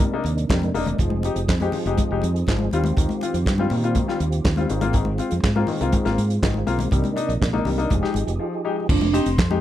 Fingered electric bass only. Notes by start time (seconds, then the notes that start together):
0.24 D#2
0.50 F2
0.74 E1
0.99 F1
1.36 F1
1.49 F2
1.86 F1
2.11 F1
2.23 F2
2.48 G#1
2.72 D#2
2.97 D#2
3.34 F2
3.46 G2
3.71 A#2
4.20 D#2
4.45 D#2
4.70 G#1
5.32 F2
5.44 G#2
5.81 C2
6.06 G#1
6.18 G#2
6.43 G#1
6.67 B1
6.92 C2
7.29 A#1
7.42 A#1
7.65 C2
7.91 F1
8.14 G#1
8.27 F1
8.89 F1
9.26 F1
9.38 F2